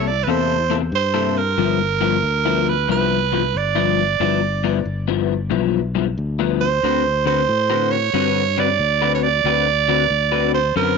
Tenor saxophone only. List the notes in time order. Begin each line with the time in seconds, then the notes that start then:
0.07 D5
0.23 B4
0.29 C5
0.95 C5
1.37 A#4
2.69 B4
2.91 B4
3.57 D5
6.61 C5
7.27 C5
7.91 C#5
8.59 D5
9.15 C#5
9.23 D5
10.54 C5
10.77 A#4